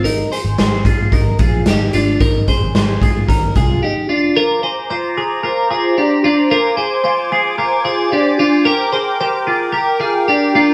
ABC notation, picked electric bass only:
X:1
M:4/4
L:1/16
Q:1/4=112
K:Bbmix
V:1 name="Picked electric bass" clef=bass
A,,,2 z A,,, A,,,2 A,,2 A,,,2 B,,,2 A,,,2 A,,,2 | A,,,2 z A,,, A,,,2 A,,2 A,,,2 C,,2 z4 | z16 | z16 |
z16 |]